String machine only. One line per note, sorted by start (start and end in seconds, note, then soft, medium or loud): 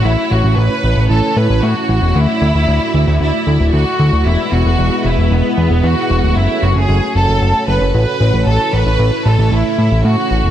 0.00 2.11 C#4 medium
0.05 4.22 A3 medium
0.05 2.13 E4 medium
0.05 2.13 C#5 medium
2.15 4.24 E4 medium
2.15 4.24 F#4 medium
2.15 4.24 D5 medium
4.26 6.34 G#3 medium
4.26 6.34 B3 medium
4.26 6.34 E4 medium
4.26 6.34 B4 medium
6.36 10.51 A3 medium
6.36 10.51 C#4 medium
6.36 8.45 F#4 medium
6.36 10.51 C#5 medium
8.47 10.51 E4 medium